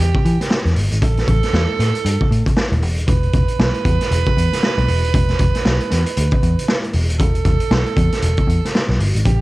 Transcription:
Already playing: tenor saxophone G4
0.00 picked electric bass E2
0.15 kick
0.25 picked electric bass E3, closed hi-hat
0.41 snare, closed hi-hat
0.51 snare
0.65 picked electric bass E2, snare, closed hi-hat
0.76 picked electric bass G1, open hi-hat
0.92 picked electric bass G#1, closed hi-hat
1.01 picked electric bass A1, tenor saxophone A4, kick, closed hi-hat
1.17 snare, closed hi-hat
1.28 picked electric bass A1, kick, closed hi-hat
1.43 snare, closed hi-hat
1.53 picked electric bass E2, snare
1.79 picked electric bass A2, snare, closed hi-hat
1.95 closed hi-hat
2.05 picked electric bass G2, closed hi-hat
2.21 kick
2.31 picked electric bass A2, closed hi-hat
2.46 kick, closed hi-hat
2.57 snare
2.72 picked electric bass D#1, closed hi-hat
2.82 picked electric bass E1, open hi-hat
2.98 picked electric bass D#1, closed hi-hat
3.07 picked electric bass E1, tenor saxophone B4, kick, closed hi-hat
3.23 closed hi-hat
3.33 picked electric bass E1, kick, closed hi-hat
3.48 closed hi-hat
3.59 picked electric bass B1, snare
3.74 closed hi-hat
3.85 picked electric bass E2, kick, closed hi-hat
4.01 snare, closed hi-hat
4.11 picked electric bass E1, closed hi-hat
4.26 kick, closed hi-hat
4.37 picked electric bass E2, closed hi-hat
4.53 snare, closed hi-hat
4.63 snare
4.78 picked electric bass B1, closed hi-hat
4.88 picked electric bass E1, open hi-hat
5.04 picked electric bass D#1, closed hi-hat
5.14 picked electric bass E1, kick, closed hi-hat
5.28 snare, closed hi-hat
5.39 picked electric bass E1, kick, closed hi-hat
5.55 snare, closed hi-hat
5.65 picked electric bass B1, snare
5.80 closed hi-hat
5.90 picked electric bass E2, snare, closed hi-hat
6.06 closed hi-hat
6.17 picked electric bass D2, closed hi-hat
6.31 kick, closed hi-hat
6.43 picked electric bass E2, closed hi-hat
6.59 closed hi-hat
6.68 snare
6.84 closed hi-hat
6.93 picked electric bass E1, open hi-hat
7.10 picked electric bass D#1, closed hi-hat
7.19 picked electric bass E1, tenor saxophone A4, kick, closed hi-hat
7.35 closed hi-hat
7.45 picked electric bass E1, kick, closed hi-hat
7.60 closed hi-hat
7.71 picked electric bass B1, snare
7.86 closed hi-hat
7.97 picked electric bass E2, kick, closed hi-hat
8.12 snare, closed hi-hat
8.22 picked electric bass E1, closed hi-hat
8.37 kick, closed hi-hat
8.47 picked electric bass E2, closed hi-hat
8.65 snare, closed hi-hat
8.75 snare
8.89 picked electric bass B1, snare
8.99 picked electric bass G1, open hi-hat
9.15 picked electric bass G#1, closed hi-hat
9.25 picked electric bass A1, tenor saxophone G4, kick, closed hi-hat

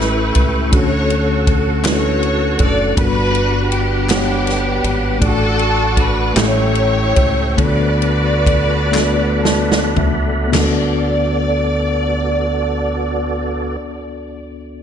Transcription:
Already playing: fingered electric bass A1, tine electric piano A2 A3 C#4 E4 G4 A4 B4, string section E4 G4 B4, tonewheel organ A4 E5 G5 C#6
0.00 snare
0.35 fingered electric bass C#2, kick, ride bell
0.70 fingered electric bass D2, tine electric piano D3 A3 C#4 D4 F#4, tonewheel organ F#5, kick, ride bell
0.74 string section F#4 A4 C#5, tine electric piano A4
1.10 ride bell
1.47 kick, ride bell
1.83 tine electric piano A3 C#4 D4 E4 B4, snare, clap, ride bell
1.87 string section F#4 A4 C#5
1.92 tine electric piano F#4
2.23 ride bell
2.59 fingered electric bass F#1, string section D5, kick, ride bell
2.96 fingered electric bass G1, tine electric piano G2 G3 B3 D4 F#4 A#4, string section B4, tonewheel organ F#5 B5, kick, ride bell
3.00 tonewheel organ G3, string section D4 F#4
3.06 tine electric piano B4
3.35 ride bell
3.72 string section B3 D4 G4, ride bell
4.09 tine electric piano B3 D4 G4 C#5 F#5, snare, clap, ride bell
4.47 snare, ride bell
4.84 fingered electric bass G#1, ride bell
5.19 fingered electric bass A1, tine electric piano A2 A3 D4 F4 A4 D5, tonewheel organ A4 D6, kick, ride bell
5.24 string section D4 F#4 A4, tine electric piano F#4
5.59 ride bell
5.97 string section B4, kick, ride bell
6.33 fingered electric bass A1, tine electric piano A2 A3 C4 E4 G4 A4, tonewheel organ E5 G5 C#6, snare, clap, ride bell
6.38 tine electric piano C#4, string section E4 G4 C#5
6.75 ride bell
7.16 fingered electric bass C#2, kick, ride bell
7.57 fingered electric bass D2, tine electric piano D3 A3 B3 D4 F4 A4, tonewheel organ A4 D5 F#5 B5, kick, ride bell
7.62 string section F#4 B4 D5
7.66 tine electric piano F#4
8.02 ride bell
8.46 kick, ride bell
8.91 tine electric piano A3 B3 D4 F#4 A4, clap
8.96 snare
9.43 tine electric piano A5, snare
9.72 snare
9.97 fingered electric bass C#2, tine electric piano E5, floor tom
10.47 tine electric piano B3
10.52 fingered electric bass D2, tine electric piano D2 D4 F#4, tonewheel organ B3 F#4 A4 D5, string section D5, snare, clap, floor tom, crash
10.61 tine electric piano A4

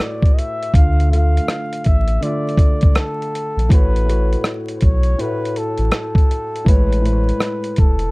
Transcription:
Already playing: felt piano A2 A3 F#4 B4 C#5 E5
0.00 flugelhorn D5
0.22 kick, closed hi-hat
0.34 flugelhorn D#5
0.38 flugelhorn E5, closed hi-hat
0.63 closed hi-hat
0.74 sub bass D2, felt piano D3 A3 F4, flugelhorn F5, kick, closed hi-hat
0.79 felt piano F5
1.00 closed hi-hat
1.11 felt piano D3 A3 F4, flugelhorn F5, closed hi-hat
1.16 felt piano F5
1.37 closed hi-hat
1.48 cross-stick, closed hi-hat
1.73 closed hi-hat
1.84 sub bass A1, flugelhorn E5, kick, closed hi-hat
2.08 closed hi-hat
2.21 felt piano D3 A3 F4, flugelhorn D5, closed hi-hat
2.25 felt piano E5
2.49 closed hi-hat
2.57 kick, closed hi-hat
2.81 sub bass C#2, kick, closed hi-hat
2.95 flugelhorn A4, cross-stick, closed hi-hat
3.22 closed hi-hat
3.35 closed hi-hat
3.57 sub bass A#1, closed hi-hat
3.69 sub bass A1, felt piano A2 A3 F#4, flugelhorn B4, kick, closed hi-hat
3.73 felt piano C#5
3.96 closed hi-hat
4.06 felt piano A2 A3 F#4, closed hi-hat
4.11 felt piano C#5
4.33 closed hi-hat
4.44 cross-stick, closed hi-hat
4.68 closed hi-hat
4.78 flugelhorn C5, closed hi-hat
4.82 sub bass B1, flugelhorn C#5, kick
5.03 closed hi-hat
5.18 felt piano A2 A3 F#4, flugelhorn B4, closed hi-hat
5.23 felt piano C#5
5.45 closed hi-hat
5.56 flugelhorn A4, closed hi-hat
5.78 sub bass A1, closed hi-hat
5.92 flugelhorn A4, cross-stick, closed hi-hat
6.15 kick, closed hi-hat
6.31 closed hi-hat
6.56 closed hi-hat
6.64 sub bass A1, felt piano A2 G#3 B4, flugelhorn B4, kick, closed hi-hat
6.69 felt piano C#5
6.92 closed hi-hat
7.01 felt piano A2 G#3 B4, closed hi-hat
7.06 felt piano C5
7.13 felt piano C#5
7.29 closed hi-hat
7.40 cross-stick, closed hi-hat
7.64 closed hi-hat
7.76 sub bass E1, flugelhorn A4, kick, closed hi-hat
7.99 closed hi-hat

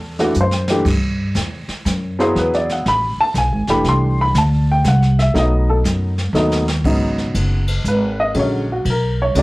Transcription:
Already playing: upright bass E2, upright piano A4
0.19 upright piano E3 A3 D4 F#4, snare
0.35 upright bass F#2, hi-hat pedal
0.41 upright piano C5
0.51 snare
0.68 upright piano E3 A3 D4 G4, snare
0.85 upright bass G2, brush sweep, kick, snare, crash
1.35 upright bass E2, kick, snare, hi-hat pedal
1.68 muted upright bass stroke, snare
1.85 upright bass F#2, kick, snare, hi-hat pedal
2.19 upright piano F#3 B3 E4 G#4 C5, snare
2.35 upright bass E2, upright piano B4, brush sweep, kick, snare
2.54 upright piano D5, snare
2.69 upright piano F#5, snare
2.85 upright bass A1, upright piano B5, kick, snare
3.18 upright piano A5, muted upright bass stroke
3.34 upright bass B1, upright piano G#5, kick, snare, hi-hat pedal
3.52 upright bass G#1
3.67 upright bass E1, upright piano E3 A3 D4 G4 B5, snare
3.84 upright bass C2, brush sweep, kick, snare
3.89 upright piano C6
4.21 upright piano B5
4.35 upright bass D2, upright piano A5, kick, snare, hi-hat pedal
4.71 upright piano G5
4.84 upright bass C2, upright piano F#5, kick, snare, hi-hat pedal
5.03 snare
5.19 upright piano E5, snare
5.34 upright bass B1, upright piano F#3 A3 B3 D#4, brush sweep, kick, snare
5.38 upright piano D#5
5.70 upright piano A4
5.84 upright bass F#2, kick, snare, hi-hat pedal
6.18 snare
6.33 upright bass D#2, upright piano F#3 A3 B3 D#4, snare
6.52 snare
6.68 snare
6.84 upright bass G#1, upright piano C#3 F#3 B3 D#4, kick, crash
7.18 snare
7.34 upright bass F#1, kick, hi-hat pedal, ride
7.68 ride
7.84 upright bass G#1, upright piano B4, kick, hi-hat pedal
8.20 upright piano D#5
8.34 upright bass A#1, upright piano D3 F#3 G#3 C#4, kick, ride
8.39 upright piano C#5
8.72 upright piano F#4
8.85 upright bass B1, kick, ride
8.90 upright piano A#4
9.22 upright piano C#5
9.35 upright bass C#2, upright piano D3 F#3 G#3 C#4 D5, kick, hi-hat pedal, ride

